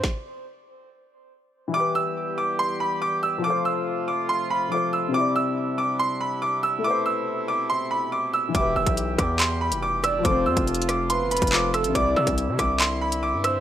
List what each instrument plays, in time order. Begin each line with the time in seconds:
0.04 kick, snare
1.68 grand piano E3
1.72 brass ensemble E3 G3 B3 G4, grand piano E4 G4 D6
1.80 grand piano B4
1.95 grand piano E6
2.38 grand piano D6
2.59 grand piano C6
2.80 grand piano B5
3.02 grand piano D6
3.23 grand piano E6
3.38 grand piano F3 F4
3.44 brass ensemble C3 F3 A3 F4, grand piano A4 D6
3.50 grand piano C5
3.65 grand piano E6
4.08 grand piano D6
4.29 grand piano C6
4.50 grand piano B5
4.69 grand piano F3 F4 A4 D6
4.75 grand piano C5
4.93 grand piano E6
5.08 grand piano C3 C4
5.14 brass ensemble G3 D4 E4, grand piano E4 D6
5.20 grand piano D5
5.36 grand piano E6
5.78 grand piano D6
5.99 grand piano C6
6.21 grand piano B5
6.42 grand piano D6
6.63 grand piano E6
6.78 grand piano A3
6.82 brass ensemble B2 C3 A3, grand piano E4 B4 D6
6.90 grand piano C5
7.06 grand piano E6
7.48 grand piano D6
7.70 grand piano C6
7.91 grand piano B5
8.12 grand piano D6
8.33 grand piano E6
8.49 grand piano E3 E4
8.55 808-style bass E1, brass ensemble E3 G3 G4, grand piano G4 D6, soft synth lead E5, kick, closed hi-hat
8.61 grand piano B4
8.76 808-style bass E1, grand piano E6
8.87 808-style bass B1, kick, closed hi-hat
8.97 closed hi-hat
9.18 808-style bass E2, grand piano D6, kick, cross-stick, closed hi-hat
9.40 grand piano C6, clap, closed hi-hat
9.61 grand piano B5
9.72 808-style bass F1, closed hi-hat
9.82 grand piano D6
10.04 soft synth lead D5, grand piano E6, cross-stick, closed hi-hat
10.19 grand piano F3 F4
10.25 808-style bass F1, brass ensemble C3 F3 A3 F4, grand piano A4 D6, soft synth lead C5, kick, closed hi-hat
10.31 grand piano C4
10.46 808-style bass F2, grand piano E6
10.57 808-style bass F1, kick, closed hi-hat
10.67 closed hi-hat
10.75 closed hi-hat
10.82 closed hi-hat
10.89 grand piano D6, cross-stick, closed hi-hat
11.10 soft synth lead B4, grand piano C6, closed hi-hat
11.21 808-style bass G1
11.31 808-style bass F1, grand piano B5, closed hi-hat
11.37 closed hi-hat
11.42 808-style bass F1, kick, closed hi-hat
11.47 grand piano F3, closed hi-hat
11.51 grand piano F4 A4 C5 D6, clap
11.74 soft synth lead A4, grand piano E6, cross-stick, closed hi-hat
11.84 808-style bass A1, closed hi-hat
11.89 grand piano C3 C4
11.95 808-style bass C2, brass ensemble D3 G3 C4 E4, grand piano E4 D6, soft synth lead D5, kick, closed hi-hat
12.01 grand piano D5
12.16 808-style bass C3, grand piano E6
12.27 808-style bass C2, kick, closed hi-hat
12.38 closed hi-hat
12.48 808-style bass C3
12.59 808-style bass C2, grand piano D6, kick, cross-stick, closed hi-hat
12.80 grand piano C6, clap, closed hi-hat
13.01 grand piano B5
13.12 closed hi-hat
13.23 grand piano D6
13.33 808-style bass G2
13.44 soft synth lead C5, grand piano E6, cross-stick, closed hi-hat